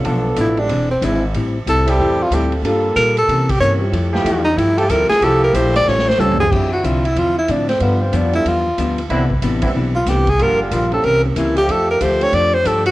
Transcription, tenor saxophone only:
X:1
M:4/4
L:1/16
Q:"Swing" 1/4=186
K:F
V:1 name="Tenor saxophone"
z4 E2 D4 ^B,2 E2 z2 | z4 A2 G4 F2 G2 z2 | z4 B2 A4 G2 _d2 z2 | z6 _E2 =E2 G2 B2 _A2 |
A2 B2 c2 d2 ^c2 ^B2 A2 _A2 | [K:Dm] G2 ^F2 =F2 E2 F2 E2 D2 C2 | =B,2 C2 D2 E2 F6- F z | z8 z2 F2 G2 ^G2 |
B2 D2 F2 A2 B2 _D2 E2 G2 | A2 B2 c2 ^c2 d2 =c2 A2 ^F2 |]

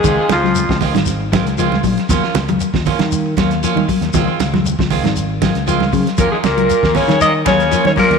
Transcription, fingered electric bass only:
X:1
M:4/4
L:1/16
Q:1/4=117
K:Ebdor
V:1 name="Fingered electric bass" clef=bass
D,, z D,,3 D,,2 A,,,4 D,,3 B,,, z | E,, z D,,2 z E,, z E,3 E,,2 z E, z E,, | D,, z D,,3 D,,2 A,,,4 D,,3 D, z | E,, z D,,2 z E,, z E,3 E,,2 z E, z E,, |]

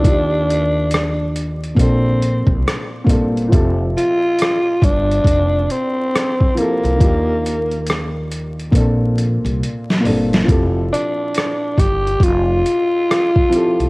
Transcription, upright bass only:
X:1
M:4/4
L:1/16
Q:"Swing 16ths" 1/4=69
K:F
V:1 name="Upright bass" clef=bass
_E,,8 B,,,3 C,, z2 G,,,2 | F,,,2 z4 G,,,2 F,,,2 z4 z C,, | _E,,8 B,,,3 C,, z2 G,,,2 | F,,,2 z4 G,,,2 F,,,2 z4 z C,, |]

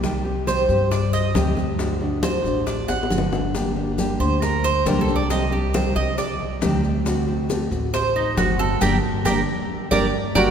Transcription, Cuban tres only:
X:1
M:4/4
L:1/8
Q:1/4=137
K:Gm
V:1 name="Cuban tres"
z2 c2 d e2 z | z2 c2 d ^f2 z | z3 c B c (3B A d | e G c e d4 |
z4 c E ^F A | [GBd] z [GBd] z2 [GBd] z [GBd] |]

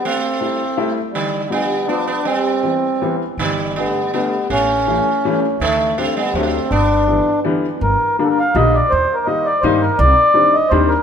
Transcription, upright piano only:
X:1
M:3/4
L:1/8
Q:"Swing" 1/4=164
K:G
V:1 name="Upright piano" clef=bass
z2 [G,A,CE] z [G,A,CE] z | z2 [=F,G,B,D] z [F,G,B,D] z | z2 [E,G,B,C] z [E,G,B,C] z | z2 [D,G,A,B,] z [D,G,A,B,] z |
z2 [E,G,A,^C] z [E,G,A,C] z | z2 [D,G,A,C] z [D,F,A,C] z | z2 [D,E,G,B,] z [D,E,G,B,] z | [K:Gm] z2 [D,G,B,D] z [D,G,B,D] z |
z2 [E,G,B,E] z [E,G,B,E] z | z2 [E,G,CD] z [E,G,CD] z |]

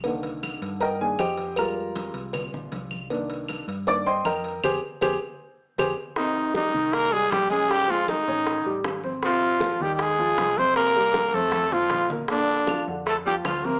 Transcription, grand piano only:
X:1
M:4/4
L:1/8
Q:1/4=157
K:Cm
V:1 name="Grand piano"
z4 [Begb] [Aa] [Gceg]2 | [Bb]3 z4 z | z4 [dd'] [cegc'] [Begb]2 | [GAc] z [GAc] z3 [GAc] z |
[C,C]2 [G,G] [E,E]2 [G,G]2 [_D,_D]- | [_D,_D] [A,A]2 [D_d]2 [G,G]2 [Cc] | [C,C]2 [F,F] [E,E]2 [F,F]2 [C,C]- | [C,C] [G,G]2 [Cc]2 [F,F]2 [B,B] |
[B,,B,]2 [F,F] [D,D]2 [F,F]2 [C,C] |]
V:2 name="Grand piano"
[D,E,B,]4- [D,E,B,] [E,B,D] z2 | [G,A,F]8 | [E,B,D]3 z [E,B,D] z3 | z8 |
z8 | z8 | z8 | z8 |
z8 |]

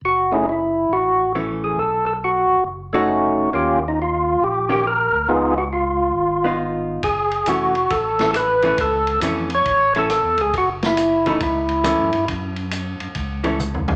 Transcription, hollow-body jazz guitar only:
X:1
M:4/4
L:1/8
Q:"Swing" 1/4=137
K:F#dor
V:1 name="Hollow-body jazz guitar"
z6 [E,A,C]2 | z4 z [A,DF] z2 | z4 z [D,^A,C=G] z2 | z4 z [B,D^E]3 |
z2 [E,A,C] z2 [E,A,C] z [E,A,C] | z2 [E,A,C] z2 [E,A,C] z2 | z3 [E,A,C] z2 [E,A,C] z | z4 z [E,A,C] z2 |]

